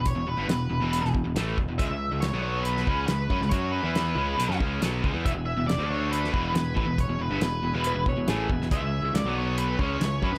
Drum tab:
HH |x---x---x---x---|x---x---x---x---|x---x---x---x---|x---x---x---x---|
SD |----o----o--o---|----o----o--o--o|----o----o--o---|----o----o--o---|
BD |o---------o---o-|o---------o---o-|o---------o---o-|o---------o---o-|

HH |x---x---x---x---|x---x---x---x---|
SD |----o-------o--o|----o-------o--o|
BD |o---------o---o-|o---------o---o-|